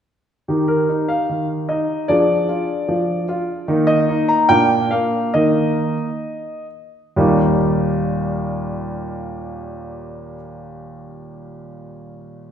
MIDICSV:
0, 0, Header, 1, 2, 480
1, 0, Start_track
1, 0, Key_signature, -3, "major"
1, 0, Tempo, 804290
1, 285, Time_signature, 2, 2, 24, 8
1, 2680, Tempo, 852273
1, 3160, Tempo, 887574
1, 3640, Tempo, 928793
1, 6888, End_track
2, 0, Start_track
2, 0, Title_t, "Grand piano"
2, 0, Program_c, 0, 0
2, 288, Note_on_c, 0, 51, 49
2, 288, Note_on_c, 0, 63, 33
2, 289, Note_on_c, 0, 67, 35
2, 405, Note_on_c, 0, 70, 57
2, 522, Note_off_c, 0, 63, 0
2, 525, Note_off_c, 0, 51, 0
2, 531, Note_on_c, 0, 63, 37
2, 648, Note_on_c, 0, 77, 59
2, 651, Note_off_c, 0, 70, 0
2, 766, Note_off_c, 0, 63, 0
2, 771, Note_on_c, 0, 51, 38
2, 864, Note_off_c, 0, 77, 0
2, 1003, Note_off_c, 0, 51, 0
2, 1007, Note_on_c, 0, 75, 58
2, 1010, Note_on_c, 0, 63, 41
2, 1226, Note_off_c, 0, 67, 0
2, 1241, Note_off_c, 0, 63, 0
2, 1243, Note_on_c, 0, 74, 74
2, 1246, Note_off_c, 0, 75, 0
2, 1248, Note_on_c, 0, 62, 41
2, 1248, Note_on_c, 0, 68, 39
2, 1249, Note_on_c, 0, 53, 55
2, 1479, Note_off_c, 0, 53, 0
2, 1485, Note_on_c, 0, 65, 47
2, 1715, Note_off_c, 0, 65, 0
2, 1721, Note_on_c, 0, 53, 50
2, 1952, Note_off_c, 0, 53, 0
2, 1961, Note_on_c, 0, 65, 57
2, 2172, Note_off_c, 0, 62, 0
2, 2172, Note_off_c, 0, 68, 0
2, 2190, Note_off_c, 0, 65, 0
2, 2194, Note_off_c, 0, 74, 0
2, 2196, Note_on_c, 0, 51, 68
2, 2197, Note_on_c, 0, 58, 45
2, 2198, Note_on_c, 0, 63, 49
2, 2309, Note_on_c, 0, 75, 81
2, 2428, Note_off_c, 0, 51, 0
2, 2432, Note_off_c, 0, 63, 0
2, 2441, Note_on_c, 0, 63, 56
2, 2554, Note_off_c, 0, 75, 0
2, 2558, Note_on_c, 0, 82, 80
2, 2657, Note_off_c, 0, 58, 0
2, 2676, Note_off_c, 0, 63, 0
2, 2678, Note_on_c, 0, 79, 97
2, 2680, Note_off_c, 0, 82, 0
2, 2682, Note_on_c, 0, 46, 59
2, 2683, Note_on_c, 0, 58, 45
2, 2683, Note_on_c, 0, 62, 41
2, 2911, Note_off_c, 0, 46, 0
2, 2913, Note_off_c, 0, 58, 0
2, 2915, Note_on_c, 0, 77, 68
2, 2916, Note_off_c, 0, 79, 0
2, 2921, Note_on_c, 0, 58, 54
2, 3139, Note_off_c, 0, 62, 0
2, 3153, Note_off_c, 0, 58, 0
2, 3157, Note_on_c, 0, 75, 71
2, 3159, Note_off_c, 0, 77, 0
2, 3160, Note_on_c, 0, 51, 53
2, 3160, Note_on_c, 0, 63, 42
2, 3161, Note_on_c, 0, 58, 39
2, 3496, Note_off_c, 0, 51, 0
2, 3543, Note_off_c, 0, 63, 0
2, 3544, Note_off_c, 0, 58, 0
2, 3855, Note_off_c, 0, 75, 0
2, 4123, Note_on_c, 0, 39, 64
2, 4125, Note_on_c, 0, 46, 53
2, 4126, Note_on_c, 0, 55, 51
2, 4126, Note_on_c, 0, 58, 51
2, 4126, Note_on_c, 0, 63, 50
2, 4129, Note_on_c, 0, 67, 48
2, 4225, Control_c, 0, 64, 127
2, 5766, Note_off_c, 0, 39, 0
2, 5768, Note_off_c, 0, 46, 0
2, 5769, Note_off_c, 0, 58, 0
2, 5770, Note_off_c, 0, 55, 0
2, 5770, Note_off_c, 0, 63, 0
2, 5773, Note_off_c, 0, 67, 0
2, 6888, End_track
0, 0, End_of_file